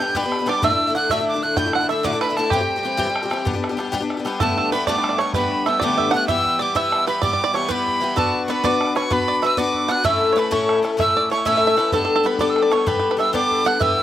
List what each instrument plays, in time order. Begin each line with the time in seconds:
Already playing: tin whistle G6
0.00 twelve-string acoustic guitar G3 B3 D4 G4
0.15 twelve-string acoustic guitar G3 B3 D4 G4, five-string banjo B4, tin whistle B5, bodhran
0.23 twelve-string acoustic guitar B3 D4 G4
0.32 bodhran
0.39 twelve-string acoustic guitar B3 D4 G4
0.46 twelve-string acoustic guitar G3 B3 D4 G4, five-string banjo D5, tin whistle D6, bodhran
0.62 twelve-string acoustic guitar D2 A2 D3 A3 D4 E4, five-string banjo E5, tin whistle E6, bodhran
0.70 twelve-string acoustic guitar D3 A3 D4 E4
0.80 bodhran
0.87 twelve-string acoustic guitar D3 A3 D4 E4
0.95 twelve-string acoustic guitar D3 A3 D4 E4, five-string banjo F#5, tin whistle F#6
1.10 twelve-string acoustic guitar D2 A2 D3 A3 D4 E4, five-string banjo E5, tin whistle E6, bodhran
1.18 twelve-string acoustic guitar D3 A3 D4 E4
1.28 tin whistle D6
1.34 twelve-string acoustic guitar D3 A3 D4 E4
1.42 twelve-string acoustic guitar D3 A3 D4 E4, tin whistle F#6
1.56 twelve-string acoustic guitar D2 A2 D3 A3 D4 E4, five-string banjo G5, tin whistle G6, bodhran
1.65 twelve-string acoustic guitar D3 A3 D4 E4
1.73 five-string banjo F#5, tin whistle F#6, bodhran
1.81 twelve-string acoustic guitar D3 A3 D4 E4
1.89 twelve-string acoustic guitar D3 A3 D4 E4, five-string banjo E5, tin whistle E6, bodhran
2.03 twelve-string acoustic guitar D2 A2 D3 A3 D4 E4, five-string banjo D5, tin whistle D6, bodhran
2.12 twelve-string acoustic guitar D3 A3 D4 E4
2.21 five-string banjo B4, tin whistle B5, bodhran
2.29 twelve-string acoustic guitar D3 A3 D4 E4
2.37 twelve-string acoustic guitar D3 A3 D4 E4, tin whistle A5, bodhran
2.50 twelve-string acoustic guitar E3 G3 C4 G4, five-string banjo G4, tin whistle G5, bodhran
2.60 twelve-string acoustic guitar G3 C4 G4
2.69 bodhran
2.76 twelve-string acoustic guitar G3 C4 G4
2.83 twelve-string acoustic guitar E3 G3 C4 G4
2.97 twelve-string acoustic guitar E3 G3 C4 G4, bodhran
3.07 twelve-string acoustic guitar G3 C4 G4
3.16 bodhran
3.23 twelve-string acoustic guitar G3 C4 G4
3.30 twelve-string acoustic guitar E3 G3 C4 G4, bodhran
3.45 twelve-string acoustic guitar G3 B3 D4 G4, bodhran
3.53 twelve-string acoustic guitar B3 D4 G4
3.64 bodhran
3.69 twelve-string acoustic guitar B3 D4 G4
3.77 twelve-string acoustic guitar G3 B3 D4 G4, bodhran
3.92 twelve-string acoustic guitar G3 B3 D4 G4, bodhran
4.00 twelve-string acoustic guitar B3 D4 G4
4.10 bodhran
4.17 twelve-string acoustic guitar B3 D4 G4
4.25 twelve-string acoustic guitar G3 B3 D4 G4, bodhran
4.40 twelve-string acoustic guitar G2 D3 G3 A3 B3 D4, five-string banjo A4, tin whistle A5, bodhran
4.58 five-string banjo A4, bodhran
4.72 twelve-string acoustic guitar G3 A3 B3 D4, five-string banjo B4, tin whistle B5
4.87 twelve-string acoustic guitar G2 D3 G3 A3 B3 D4, five-string banjo D5, tin whistle D6, bodhran
4.98 five-string banjo D5
5.04 bodhran
5.09 five-string banjo D5
5.18 twelve-string acoustic guitar G3 A3 B3 D4, five-string banjo C#5, tin whistle C#6, bodhran
5.33 twelve-string acoustic guitar G2 D3 G3 A3 B3 D4, five-string banjo B4, tin whistle B5, bodhran
5.43 bodhran
5.66 twelve-string acoustic guitar G3 A3 B3 D4, five-string banjo E5, tin whistle E6, bodhran
5.80 twelve-string acoustic guitar G2 D3 G3 A3 B3, five-string banjo D5, bodhran
5.84 twelve-string acoustic guitar D4, tin whistle D6
5.98 five-string banjo E5, bodhran
6.11 twelve-string acoustic guitar G3 B3, five-string banjo F#5, bodhran
6.16 twelve-string acoustic guitar A3 D4, tin whistle F#6
6.28 twelve-string acoustic guitar E3 G3 B3 G4, five-string banjo E5, tin whistle E6, bodhran
6.46 bodhran
6.59 twelve-string acoustic guitar E3 G3 B3 G4, five-string banjo D5, tin whistle D6
6.75 twelve-string acoustic guitar E3 G3 B3 G4, five-string banjo E5, tin whistle E6, bodhran
6.92 bodhran
7.06 twelve-string acoustic guitar E3 G3 B3 G4, five-string banjo B4, tin whistle B5
7.22 twelve-string acoustic guitar E3 G3 B3 G4, five-string banjo D5, tin whistle D6, bodhran
7.32 five-string banjo D5, bodhran
7.44 five-string banjo D5
7.54 twelve-string acoustic guitar E3 G3 B3 G4, five-string banjo C#5, tin whistle C#6, bodhran
7.68 twelve-string acoustic guitar E3 G3 B3 G4, five-string banjo B4, tin whistle B5, bodhran
7.88 bodhran
8.01 twelve-string acoustic guitar E3 G3 B3 G4
8.16 twelve-string acoustic guitar B3 D4 F#4 B4, five-string banjo A4, tin whistle A5, bodhran
8.35 bodhran
8.46 twelve-string acoustic guitar B3 D4, five-string banjo B4, tin whistle C#6
8.50 twelve-string acoustic guitar F#4 B4, tin whistle B5
8.64 twelve-string acoustic guitar B3 D4 F#4 B4, five-string banjo D5, tin whistle D6, bodhran
8.81 bodhran
8.95 twelve-string acoustic guitar B3 D4 F#4 B4, five-string banjo C#5, tin whistle C#6, bodhran
9.10 twelve-string acoustic guitar B3 D4 F#4 B4, five-string banjo B4, tin whistle B5, bodhran
9.19 bodhran
9.28 five-string banjo D5
9.42 twelve-string acoustic guitar B3 D4 F#4 B4, five-string banjo E5, bodhran
9.47 tin whistle E6
9.57 twelve-string acoustic guitar B3 D4 F#4 B4, five-string banjo D5, tin whistle D6, bodhran
9.74 bodhran
9.88 twelve-string acoustic guitar B3 D4 F#4 B4, five-string banjo F#5, tin whistle F#6, bodhran
10.04 twelve-string acoustic guitar A2 A3 C#4 E4 A4, five-string banjo E5, tin whistle E6, bodhran
10.22 bodhran
10.33 twelve-string acoustic guitar A3, five-string banjo B4 C#5
10.37 twelve-string acoustic guitar C#4 E4 A4, tin whistle B5, bodhran
10.51 twelve-string acoustic guitar A2 A3 C#4 E4 A4, five-string banjo C#5, tin whistle C#6, bodhran
10.69 bodhran
10.82 twelve-string acoustic guitar A3 C#4 E4 A4, bodhran
10.97 twelve-string acoustic guitar A2 A3 C#4 E4 A4, five-string banjo E5, tin whistle E6, bodhran
11.09 bodhran
11.17 five-string banjo D5
11.30 twelve-string acoustic guitar A3 C#4 E4 A4, five-string banjo C#5, tin whistle C#6, bodhran
11.45 twelve-string acoustic guitar A2 A3 C#4 E4 A4, five-string banjo E5, tin whistle E6, bodhran
11.57 five-string banjo E5
11.63 bodhran
11.67 five-string banjo E5
11.77 twelve-string acoustic guitar A3 C#4 E4 A4, five-string banjo B4, bodhran
11.92 twelve-string acoustic guitar G3 B3 D4 A4, five-string banjo A4, tin whistle A5, bodhran
12.05 five-string banjo A4
12.16 five-string banjo A4
12.23 twelve-string acoustic guitar G3 B3 D4 A4, five-string banjo B4, tin whistle B5
12.39 twelve-string acoustic guitar G3 B3 D4 A4, five-string banjo D5, tin whistle D6, bodhran
12.50 tin whistle E6
12.56 bodhran
12.62 five-string banjo D5, tin whistle D6
12.71 twelve-string acoustic guitar G3 B3 D4 A4, five-string banjo C#5, tin whistle C#6, bodhran
12.86 twelve-string acoustic guitar G3 B3 D4 A4, five-string banjo B4, tin whistle B5, bodhran
12.95 bodhran
12.99 five-string banjo B4
13.11 five-string banjo B4
13.17 twelve-string acoustic guitar G3 B3 D4 A4, five-string banjo E5, tin whistle E6, bodhran
13.33 twelve-string acoustic guitar G3 B3 D4 A4, five-string banjo D5, tin whistle D6, bodhran
13.51 bodhran
13.64 twelve-string acoustic guitar G3 B3 D4 A4, five-string banjo F#5, tin whistle F#6, bodhran
13.79 twelve-string acoustic guitar E3 G3 B3 G4, five-string banjo E5, tin whistle E6, bodhran
13.99 bodhran